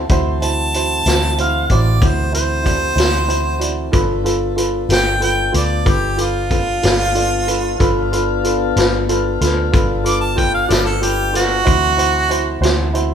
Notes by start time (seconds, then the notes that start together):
0.09 D2 E3 C4 E4 F#4 A4 C5, kick, closed hi-hat
0.41 E4 F#4 C5 A5, closed hi-hat
0.74 E4 F#4 C5, closed hi-hat
1.06 D2 E4 F#4 C5, snare, closed hi-hat
1.38 E4 F#4 C5 F5, closed hi-hat
1.70 A1 E4 F#4 C5 D5, kick, closed hi-hat
2.01 D2 E4 F#4 C5, kick, closed hi-hat
2.32 E4 F#4 C5, closed hi-hat
2.63 E4 F#4 D5, kick, closed hi-hat
2.95 D2 E4 F#4 C5, closed hi-hat
3.00 snare
3.27 E4 F#4 C5, closed hi-hat
3.59 E4 F#4 D5, closed hi-hat
3.92 G1 B3 D4 F4 A4 B4, kick, closed hi-hat
4.24 F4 A4 B4, closed hi-hat
4.56 F4 A4 B4, closed hi-hat
4.89 G1 F4 A4 B4 G5, snare, closed hi-hat
5.20 F4 A4 B4 G5, closed hi-hat
5.52 D2 F4 A4 B4 D5, closed hi-hat
5.85 G1 F4 A4 B4, kick, closed hi-hat
5.90 G4
6.17 F4 A4 B4, closed hi-hat
6.22 F4
6.50 F4 A4 B4, kick, closed hi-hat
6.83 G1 F4 A4 B4, snare, closed hi-hat
7.15 F4 A4 D5, closed hi-hat
7.47 F4 A4 B4, closed hi-hat
7.78 G1 B3 D4 F4 A4 B4 F5, kick, closed hi-hat
8.12 F4 A4 B4, closed hi-hat
8.44 F4 A4 B4, closed hi-hat
8.76 G1 F4 A4 B4, snare, closed hi-hat
9.09 F4 A4 B4, closed hi-hat
9.41 D2 F4 A4 B4, snare, closed hi-hat
9.72 G1 F4 A4 B4, kick, closed hi-hat
10.03 F4 A4 B4 D6, closed hi-hat
10.21 A5
10.36 F4 A4 B4 G5, kick, closed hi-hat
10.54 F5
10.68 G1 F4 A4 B4 D5, closed hi-hat
10.72 snare
10.85 A4
11.01 F4 G4 A4 B4, closed hi-hat
11.32 F4 A4 B4, closed hi-hat
11.37 F#4, snare
11.65 D2 E3 C4 E4 F#4 A4 C5, kick, closed hi-hat
11.97 E4 F#4 C5, closed hi-hat
12.29 E4 F#4 C5, closed hi-hat
12.61 D2 E4 F#4 C5, closed hi-hat
12.65 snare
12.93 E4 F#4 C5, closed hi-hat